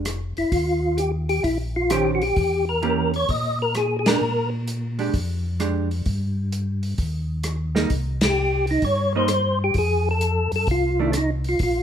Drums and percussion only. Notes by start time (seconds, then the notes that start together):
0.05 cross-stick, closed hi-hat
0.37 open hi-hat
0.52 kick, open hi-hat
0.98 closed hi-hat
1.29 open hi-hat
1.44 kick, open hi-hat
1.90 cross-stick, closed hi-hat
2.22 open hi-hat
2.36 kick, open hi-hat
2.83 closed hi-hat
3.14 open hi-hat
3.29 kick, open hi-hat
3.75 cross-stick, closed hi-hat
4.06 snare, ride
4.67 closed hi-hat
4.99 open hi-hat
5.14 kick, open hi-hat
5.60 cross-stick, closed hi-hat
5.91 open hi-hat
6.06 kick, open hi-hat
6.52 closed hi-hat
6.83 open hi-hat
6.98 kick, open hi-hat
7.43 cross-stick, closed hi-hat
7.76 snare
7.90 kick, open hi-hat
8.21 snare, ride
8.67 open hi-hat
8.82 kick, open hi-hat
9.28 cross-stick, closed hi-hat
9.74 kick, open hi-hat
10.21 closed hi-hat
10.52 open hi-hat
10.67 kick, open hi-hat
11.13 cross-stick, closed hi-hat
11.44 open hi-hat
11.59 kick, open hi-hat